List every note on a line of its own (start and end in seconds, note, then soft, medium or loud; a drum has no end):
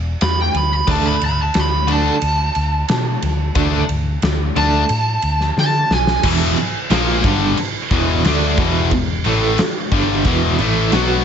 0.00 0.14 E1 medium
0.21 0.48 E2 medium
0.21 0.38 B5 loud
0.21 snare loud
0.21 ride medium
0.41 0.56 G5 loud
0.54 0.81 D2 medium
0.54 0.72 B5 loud
0.54 ride medium
0.74 0.89 B5 loud
0.87 1.14 D2 loud
0.87 1.15 D3 medium
0.87 1.15 A3 loud
0.87 1.15 D4 loud
0.87 1.06 A5 loud
0.87 kick loud
0.87 crash loud
1.07 1.22 B5 loud
1.21 1.48 D2 medium
1.21 1.40 B5 loud
1.21 ride medium
1.42 1.59 A5 medium
1.54 2.08 D2 loud
1.54 snare loud
1.54 ride loud
1.59 1.90 B5 loud
1.88 2.15 D3 loud
1.88 2.15 A3 medium
1.88 2.15 D4 loud
1.88 ride medium
1.92 3.87 A5 loud
2.22 2.49 D2 medium
2.22 ride loud
2.55 2.82 D2 medium
2.55 ride medium
2.89 3.16 B2 loud
2.89 snare loud
2.89 ride loud
3.22 3.49 D2 loud
3.22 ride medium
3.55 3.82 D2 medium
3.55 3.83 D3 loud
3.55 3.83 A3 loud
3.55 3.83 D4 loud
3.55 kick loud
3.55 ride loud
3.89 4.16 D2 medium
3.89 ride medium
4.22 4.49 D2 loud
4.22 snare loud
4.22 ride loud
4.56 4.83 D2 medium
4.56 4.83 D3 loud
4.56 4.84 A3 medium
4.56 4.84 D4 loud
4.56 5.55 A5 loud
4.56 ride medium
4.89 5.16 A2 loud
4.89 ride medium
5.22 5.50 D2 loud
5.22 ride medium
5.41 snare soft
5.57 5.83 D3 medium
5.57 5.91 A5 loud
5.57 snare medium
5.90 6.17 B1 medium
5.90 6.24 G#5 loud
5.90 snare medium
6.07 snare medium
6.23 6.55 E1 medium
6.23 6.56 E2 medium
6.23 6.56 B2 medium
6.23 6.57 E3 loud
6.23 kick loud
6.23 crash loud
6.23 crash medium
6.57 muted picked electric bass stroke soft
6.57 muted overdriven electric guitar stroke medium
6.57 muted distorted electric guitar stroke medium
6.57 crash medium
6.90 7.22 A#1 loud
6.90 7.23 A#2 medium
6.90 7.23 F3 medium
6.90 7.24 A#3 medium
6.90 snare loud
6.90 crash medium
7.24 7.55 G1 medium
7.24 7.57 G2 medium
7.24 7.57 D3 loud
7.24 7.57 G3 loud
7.24 kick loud
7.24 crash medium
7.57 muted overdriven electric guitar stroke medium
7.57 muted distorted electric guitar stroke medium
7.57 crash medium
7.91 8.22 E1 loud
7.91 8.24 E2 medium
7.91 8.24 B2 loud
7.91 8.25 E3 loud
7.91 kick loud
7.91 crash medium
8.24 8.55 D2 loud
8.24 8.58 D3 medium
8.24 8.58 A3 loud
8.24 8.58 D4 medium
8.24 snare loud
8.24 crash medium
8.58 8.89 E1 medium
8.58 8.91 E2 medium
8.58 8.91 B2 loud
8.58 8.91 E3 loud
8.58 kick loud
8.58 crash medium
8.91 9.23 E1 medium
8.91 9.19 E2 medium
8.91 9.19 B2 medium
8.91 kick medium
8.91 crash medium
9.25 9.56 A1 medium
9.25 9.58 A2 medium
9.25 9.58 E3 loud
9.25 9.58 A3 loud
9.25 crash medium
9.58 muted overdriven electric guitar stroke medium
9.58 muted picked electric bass stroke soft
9.58 muted distorted electric guitar stroke medium
9.58 snare loud
9.58 crash medium
9.91 10.23 G1 medium
9.91 10.24 G2 medium
9.91 10.25 D3 loud
9.91 10.25 G3 medium
9.91 kick loud
9.91 crash medium
10.24 10.56 E1 loud
10.24 10.58 E2 medium
10.24 10.58 B2 medium
10.24 10.58 E3 loud
10.24 kick loud
10.24 crash medium
10.59 10.90 A1 loud
10.59 10.92 A2 medium
10.59 10.92 E3 loud
10.59 10.92 A3 loud
10.59 crash medium
10.92 11.24 B1 medium
10.92 11.24 B2 medium
10.92 11.24 F#3 medium
10.92 11.24 B3 medium
10.92 snare loud
10.92 crash medium